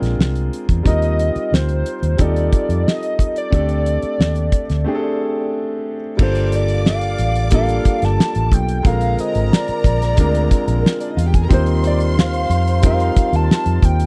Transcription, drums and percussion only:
0.03 snare soft
0.03 closed hi-hat soft
0.21 snare loud
0.35 closed hi-hat medium
0.53 closed hi-hat medium
0.69 kick medium
0.69 closed hi-hat soft
0.86 kick medium
0.86 closed hi-hat medium
1.02 closed hi-hat soft
1.19 closed hi-hat medium
1.36 closed hi-hat soft
1.54 snare medium
1.69 closed hi-hat soft
1.86 closed hi-hat medium
2.03 closed hi-hat soft
2.18 kick medium
2.18 closed hi-hat medium
2.36 closed hi-hat soft
2.52 kick medium
2.52 closed hi-hat medium
2.70 closed hi-hat soft
2.88 snare loud
3.03 closed hi-hat medium
3.19 kick medium
3.19 closed hi-hat medium
3.36 closed hi-hat medium
3.53 kick loud
3.53 closed hi-hat medium
3.69 closed hi-hat soft
3.86 closed hi-hat medium
4.02 closed hi-hat soft
4.21 snare loud
4.35 closed hi-hat soft
4.52 kick medium
4.52 closed hi-hat medium
4.70 snare soft
4.70 closed hi-hat soft
6.19 kick loud
6.19 crash medium
6.35 closed hi-hat soft
6.52 closed hi-hat medium
6.68 closed hi-hat soft
6.86 snare loud
7.01 closed hi-hat soft
7.18 closed hi-hat medium
7.35 closed hi-hat soft
7.51 kick medium
7.51 closed hi-hat medium
7.69 closed hi-hat soft
7.85 kick medium
7.85 closed hi-hat medium
8.02 snare soft
8.02 closed hi-hat soft
8.20 snare loud
8.35 closed hi-hat medium
8.52 kick medium
8.52 closed hi-hat medium
8.68 closed hi-hat medium
8.85 kick loud
8.85 closed hi-hat medium
9.01 closed hi-hat soft
9.19 closed hi-hat medium
9.35 closed hi-hat soft
9.53 snare loud
9.68 closed hi-hat soft
9.84 kick medium
9.84 closed hi-hat medium
10.02 snare soft
10.02 closed hi-hat soft
10.17 kick medium
10.17 closed hi-hat medium
10.35 closed hi-hat soft
10.51 kick medium
10.51 closed hi-hat medium
10.68 closed hi-hat soft
10.86 snare loud
11.00 closed hi-hat medium
11.18 closed hi-hat medium
11.34 kick medium
11.34 closed hi-hat medium
11.51 kick loud
11.51 closed hi-hat medium
11.66 closed hi-hat soft
11.84 closed hi-hat medium
12.00 closed hi-hat soft
12.19 snare loud
12.33 closed hi-hat soft
12.50 closed hi-hat medium
12.67 closed hi-hat soft
12.83 kick medium
12.83 closed hi-hat medium
13.00 closed hi-hat medium
13.16 kick medium
13.16 closed hi-hat medium
13.33 closed hi-hat soft
13.51 snare loud
13.66 closed hi-hat medium
13.82 kick medium
13.82 closed hi-hat medium
14.00 closed hi-hat medium

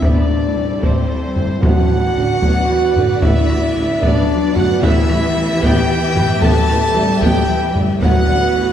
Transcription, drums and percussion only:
0.02 taiko loud
0.83 taiko medium
1.36 taiko low medium
1.63 taiko loud
2.42 taiko medium
2.96 taiko low medium
3.22 taiko loud
3.50 taiko rim soft
4.03 taiko medium
4.56 taiko low medium
4.83 taiko loud
5.10 taiko rim soft
5.63 taiko medium
6.16 taiko low medium
6.42 taiko loud
6.70 taiko rim soft
7.22 taiko medium
7.76 taiko low medium
8.03 taiko loud

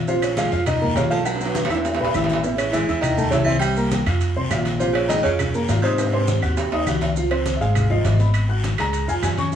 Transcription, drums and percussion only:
0.07 high conga soft
0.07 long guiro medium
0.07 maracas medium
0.22 high conga soft
0.22 high timbale medium
0.22 claves medium
0.22 maracas medium
0.37 high conga medium
0.37 high timbale medium
0.37 low timbale medium
0.37 short guiro medium
0.37 maracas medium
0.51 high conga soft
0.51 short guiro medium
0.51 maracas soft
0.66 high conga soft
0.66 low conga medium
0.66 high timbale loud
0.66 long guiro medium
0.66 claves medium
0.66 maracas medium
0.82 high conga soft
0.82 low conga medium
0.96 high conga medium
0.96 high timbale medium
0.96 low timbale medium
0.96 short guiro medium
0.96 maracas medium
1.11 short guiro medium
1.11 maracas soft
1.26 high timbale medium
1.26 long guiro medium
1.26 claves medium
1.26 maracas medium
1.36 high timbale medium
1.40 high conga soft
1.40 maracas medium
1.45 high timbale medium
1.55 high conga medium
1.55 high timbale loud
1.55 short guiro medium
1.55 maracas medium
1.65 low timbale loud
1.70 high conga soft
1.70 short guiro medium
1.70 claves medium
1.70 maracas soft
1.75 high timbale loud
1.85 high conga soft
1.85 low timbale medium
1.85 long guiro medium
1.85 maracas medium
1.95 low timbale loud
2.00 high conga soft
2.05 low timbale medium
2.14 high conga medium
2.14 low timbale medium
2.14 short guiro medium
2.14 claves medium
2.14 maracas medium
2.24 low timbale medium
2.29 high conga medium
2.29 short guiro medium
2.29 maracas soft
2.33 low timbale loud
2.44 high conga soft
2.44 long guiro medium
2.44 maracas medium
2.58 high conga soft
2.58 high timbale medium
2.58 claves medium
2.58 maracas medium
2.73 high conga medium
2.73 high timbale medium
2.73 low timbale medium
2.73 short guiro medium
2.73 maracas medium
2.88 high conga soft
2.88 short guiro medium
2.88 maracas soft
3.03 high conga soft
3.03 low conga medium
3.03 high timbale medium
3.03 long guiro medium
3.03 claves medium
3.03 maracas medium
3.18 high conga soft
3.18 low conga medium
3.18 maracas medium
3.32 high conga medium
3.32 high timbale medium
3.32 low timbale medium
3.32 short guiro medium
3.32 maracas medium
3.47 high conga medium
3.47 short guiro medium
3.47 maracas soft
3.62 high conga soft
3.62 high timbale medium
3.62 long guiro medium
3.62 claves medium
3.62 maracas medium
3.77 high conga soft
3.77 maracas medium
3.91 high conga loud
3.91 high timbale medium
3.91 low timbale medium
3.91 short guiro medium
3.91 maracas medium
4.06 high conga soft
4.06 high timbale medium
4.06 short guiro medium
4.06 claves medium
4.06 maracas soft
4.21 high conga soft
4.21 high timbale medium
4.21 long guiro medium
4.21 maracas medium
4.36 high conga soft
4.51 high conga medium
4.51 high timbale medium
4.51 low timbale medium
4.51 short guiro medium
4.51 claves medium
4.51 maracas medium
4.65 high conga medium
4.65 high timbale medium
4.65 short guiro medium
4.65 maracas soft
4.80 long guiro medium
4.80 maracas medium
4.95 high conga soft
4.95 high timbale loud
4.95 claves medium
5.10 high conga medium
5.10 high timbale medium
5.10 low timbale medium
5.10 short guiro medium
5.10 maracas medium
5.25 high conga soft
5.25 short guiro medium
5.25 maracas soft
5.39 high conga soft
5.39 low conga medium
5.39 high timbale medium
5.39 long guiro medium
5.39 claves medium
5.39 maracas medium
5.54 high conga soft
5.54 maracas medium
5.68 high conga medium
5.68 high timbale medium
5.68 low timbale medium
5.68 short guiro medium
5.68 maracas medium
5.83 short guiro medium
5.83 maracas soft
5.98 high conga soft
5.98 high timbale loud
5.98 long guiro medium
5.98 claves medium
5.98 maracas medium
6.13 high conga soft
6.13 high timbale medium
6.28 high conga medium
6.28 short guiro medium
6.28 maracas medium
6.42 high conga soft
6.42 short guiro medium
6.42 claves medium
6.42 maracas soft
6.57 high conga soft
6.57 low timbale loud
6.57 long guiro medium
6.57 maracas medium
6.72 high conga soft
6.72 low timbale loud
6.87 high conga medium
6.87 low timbale medium
6.87 short guiro medium
6.87 claves medium
6.87 maracas medium
7.01 high conga medium
7.01 low timbale medium
7.01 short guiro medium
7.01 maracas soft
7.16 high conga soft
7.16 long guiro medium
7.16 maracas medium
7.31 high conga soft
7.31 high timbale medium
7.31 claves medium
7.46 high conga medium
7.46 high timbale medium
7.46 low timbale medium
7.46 short guiro medium
7.46 maracas medium
7.60 high conga soft
7.60 short guiro medium
7.60 maracas soft
7.75 high conga soft
7.75 low conga medium
7.75 high timbale medium
7.75 long guiro medium
7.75 claves medium
7.75 maracas medium
7.90 high conga soft
7.90 low conga medium
8.05 high conga medium
8.05 high timbale medium
8.05 low timbale medium
8.05 short guiro medium
8.05 maracas medium
8.19 short guiro medium
8.19 maracas soft
8.34 high conga soft
8.34 high timbale medium
8.34 long guiro medium
8.34 claves medium
8.34 maracas medium
8.49 high conga soft
8.64 high conga medium
8.64 high timbale medium
8.64 low timbale medium
8.64 short guiro medium
8.64 maracas medium
8.78 high timbale medium
8.78 short guiro medium
8.78 claves medium
8.78 maracas soft
8.93 high conga soft
8.93 high timbale medium
8.93 long guiro medium
8.93 maracas medium
9.08 high conga soft
9.08 maracas medium
9.23 high conga medium
9.23 high timbale loud
9.23 low timbale medium
9.23 short guiro medium
9.23 claves medium
9.23 maracas medium
9.38 high conga medium
9.38 high timbale medium
9.38 short guiro medium
9.38 maracas soft
9.52 maracas medium

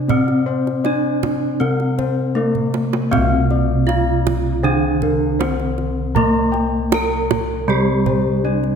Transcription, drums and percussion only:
0.09 kendang low medium
0.28 kendang slap soft
0.67 kendang slap soft
0.85 kendang slap soft
0.85 kendang high soft
1.23 kendang slap soft
1.23 kendang high medium
1.23 kendang low medium
1.61 kendang slap soft
1.80 kendang slap soft
1.99 kendang slap soft
1.99 kendang low soft
2.55 kendang low soft
2.74 kendang high soft
2.93 kendang high medium
3.13 kendang high soft
3.13 kendang low medium
3.50 kendang slap soft
3.89 kendang high soft
4.27 kendang slap soft
4.27 kendang high medium
4.27 kendang low soft
4.65 kendang slap soft
5.02 kendang low medium
5.41 kendang high medium
5.60 kendang slap soft
5.78 kendang slap soft
6.16 kendang low medium
6.54 kendang slap soft
6.92 kendang high medium
7.31 kendang slap soft
7.31 kendang high medium
7.31 kendang low medium
7.69 kendang slap soft
8.06 kendang low medium
8.64 kendang slap soft

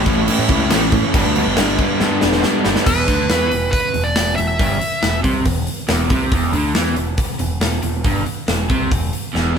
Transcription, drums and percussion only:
0.06 kick medium
0.06 crash medium
0.28 crash loud
0.48 kick medium
0.48 crash medium
0.70 snare loud
0.70 crash loud
0.92 kick medium
0.92 crash medium
1.14 kick loud
1.14 crash medium
1.36 crash medium
1.57 snare loud
1.57 crash medium
1.79 kick medium
1.79 crash medium
2.00 snare medium
2.21 snare medium
2.32 snare medium
2.43 snare loud
2.64 snare loud
2.76 snare loud
2.86 kick loud
2.86 crash loud
3.08 kick loud
3.08 open hi-hat medium
3.30 snare loud
3.30 open hi-hat medium
3.51 open hi-hat medium
3.73 kick loud
3.73 open hi-hat medium
3.94 open hi-hat medium
4.16 snare loud
4.16 open hi-hat medium
4.38 open hi-hat medium
4.59 kick loud
4.59 open hi-hat medium
4.81 open hi-hat medium
5.03 snare loud
5.03 open hi-hat medium
5.24 kick loud
5.24 open hi-hat medium
5.45 kick medium
5.45 open hi-hat medium
5.67 open hi-hat medium
5.89 snare loud
5.89 open hi-hat medium
6.10 kick loud
6.10 open hi-hat medium
6.32 kick loud
6.32 open hi-hat medium
6.53 open hi-hat medium
6.75 snare loud
6.75 open hi-hat medium
6.96 open hi-hat medium
7.18 kick loud
7.18 open hi-hat medium
7.39 open hi-hat medium
7.61 snare loud
7.61 open hi-hat medium
7.83 open hi-hat medium
8.04 kick loud
8.04 open hi-hat medium
8.26 open hi-hat medium
8.48 snare loud
8.48 open hi-hat medium
8.70 kick loud
8.70 open hi-hat medium
8.92 kick loud
8.92 open hi-hat medium
9.13 open hi-hat medium
9.35 snare medium

